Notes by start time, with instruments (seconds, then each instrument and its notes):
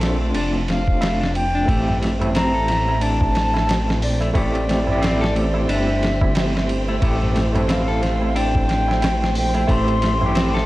Already playing: detuned saw bass A#1, tine electric piano A3 C4 D4 F4, violin section C5 A5 D6
0.01 clean electric guitar A3, snare, ride
0.21 clean electric guitar A3
0.34 detuned saw bass F1, clean electric guitar D4, ride
0.67 detuned saw bass F1, flute F5, snare, ride
0.88 kick
1.01 clean electric guitar A3, snare, ride, tabla na
1.21 clean electric guitar D4, snare
1.35 flute G5, ride
1.55 clean electric guitar D4
1.65 detuned saw bass A1, tine electric piano A3 C4 E4 G4, violin section A3 C4 C5 G5, clean electric guitar A3, synth texture C5, kick, ride, tabla na
1.88 tabla na, tabla ge
2.02 clean electric guitar A3, snare, ride
2.19 tine electric piano A3 C4 E4 A4, ride, tabla na, tabla ge
2.35 clean electric guitar C4, flute A#5, snare, ride, tabla na
2.54 clean electric guitar A4, tabla na
2.68 clean electric guitar A3, snare, ride
2.88 clean electric guitar A3, tabla na
3.01 clean electric guitar D4, flute A5, ride, tabla na
3.21 kick, tabla na
3.35 snare, ride
3.54 snare, tabla na
3.68 snare, ride, tabla na
3.88 snare, tabla na
4.01 detuned saw bass A#1, flute D5, open hi-hat
4.21 clean electric guitar A3, ride, tabla na
4.33 detuned saw bass A1, tine electric piano A3 C4 E4 G4, clean electric guitar A3, flute D5, kick, ride, tabla na
4.55 ride, tabla na
4.69 clean electric guitar A3, snare, ride
4.84 tine electric piano A3 C4, tabla na, tabla ge
4.89 tine electric piano E4 G4
5.02 clean electric guitar C4, snare, ride, tabla na
5.20 clean electric guitar A4, snare, tabla na
5.35 clean electric guitar A3, ride
5.54 clean electric guitar A3, tabla na
5.68 detuned saw bass G1, clean electric guitar D4, flute E5, ride, tabla na
5.87 tabla na
6.03 snare, ride
6.21 kick, tabla na
6.35 snare, ride, tabla na
6.55 snare, tabla na
6.69 ride
6.88 clean electric guitar A3, tabla na
7.00 detuned saw bass A1, tine electric piano A3 C4 E4 G4, clean electric guitar A3, kick, ride, tabla na
7.21 tabla na, tabla ge
7.35 clean electric guitar A3, snare, ride
7.53 tine electric piano A3 C4 E4 A4, ride, tabla na, tabla ge
7.68 clean electric guitar C4, flute F5, snare, ride, tabla na
7.88 clean electric guitar A4, tabla na
8.02 clean electric guitar A3, snare, ride
8.21 clean electric guitar A3, tabla na
8.36 clean electric guitar D4, flute G5, ride, tabla na
8.55 kick, tabla na
8.69 snare, ride
8.88 snare, tabla na
9.02 snare, ride, tabla na
9.22 snare, tabla na
9.35 detuned saw bass A#1, flute G5, open hi-hat
9.54 clean electric guitar A3, ride, tabla na
9.67 detuned saw bass A1, tine electric piano A3 C4 E4 G4, clean electric guitar A3, flute C6, kick, ride, tabla na
9.88 ride, tabla na
10.02 clean electric guitar A3, snare, ride
10.18 tine electric piano A3 C4, tabla na, tabla ge
10.23 tine electric piano E4 G4
10.35 clean electric guitar C4, snare, ride, tabla na
10.54 clean electric guitar A4, snare, tabla na